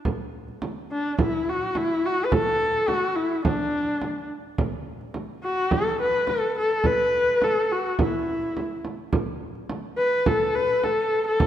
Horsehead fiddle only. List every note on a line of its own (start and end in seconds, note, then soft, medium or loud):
0.91 1.17 D4 medium
1.21 1.50 E4 medium
1.49 1.78 F#4 medium
1.77 2.07 E4 loud
2.06 2.26 F#4 medium
2.25 2.34 B4 medium
2.32 2.89 A4 loud
2.88 3.17 F#4 medium
3.16 3.44 E4 medium
3.45 4.26 D4 medium
5.43 5.73 F#4 medium
5.72 6.00 A4 loud
6.01 6.31 B4 loud
6.29 6.57 A4 medium
6.58 6.87 A4 loud
6.86 7.45 B4 loud
7.43 7.73 A4 medium
7.72 7.99 F#4 medium
8.01 8.81 E4 medium
9.98 10.29 B4 loud
10.27 10.56 A4 medium
10.54 10.85 B4 medium
10.84 11.25 A4 medium
11.27 11.47 A4 loud